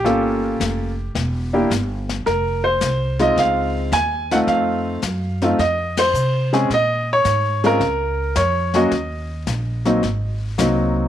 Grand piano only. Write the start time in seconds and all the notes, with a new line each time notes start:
Already playing: G4
0.04 A#3 C#4 F4 A4
1.53 A#3 D4 E4 G4
2.26 A#4
2.64 C5
3.20 G#3 C4 D#4 F4 D#5
3.39 F5
3.93 G#5
4.32 A3 C4 D#4 F4 F#5
4.48 F5
5.42 A3 C4 D#4 F4
5.59 D#5
5.99 C5
6.53 G#3 C4 C#4 G#4
6.74 D#5
7.13 C#5
7.64 G#3 C4 C#4 F4 A#4
8.37 C#5
8.75 F#3 A#3 C#4 F#4 D#5
9.85 F#3 A#3 C4 D#4
10.58 F#3 A#3 C4 D#4